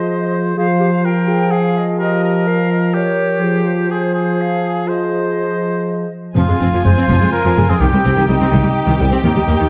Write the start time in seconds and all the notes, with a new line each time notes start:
Already playing: F3 G#4 C5 D#5
0.56 F3 G#4 C5 F5
0.80 G4
1.04 F4 A#4 G5
1.28 G#4
1.51 G#4 F5
1.76 D#5
1.99 G4 A#4 D#5
2.23 A#4
2.47 A#4 F5
2.71 D#5
2.94 G4 A#4 C#5
3.40 F3 G#4 C5
3.66 G4
3.90 F4 G#4 C5
4.14 G#4
4.39 F5
4.88 G#4 C5 D#5
6.36 F1 F2 F3 F4 G#5, triangle
6.48 F2 G#3
6.60 F1 F2 C4
6.73 F2 F3
6.84 F1 F2 G#3 C5
6.96 F2 C4
7.09 F1 F2 F3
7.20 F2 G#3
7.32 A#4
7.45 F2 F3
7.57 F1 F2 G#3
7.69 F2 C4 G#4
7.80 C2 D#3 G4 G5
7.93 C2 G3
8.04 C2 C4
8.17 C2 D#3
8.28 C2 G3 D#4
8.41 C2 C4
8.52 C2 D#3
8.63 C2 G3
8.87 C2 D#3
9.00 C2 G3
9.11 C2 C4
9.24 D#2 D#3 D#4
9.35 D#2 G3
9.48 D#2 A#3
9.60 D#2 D#3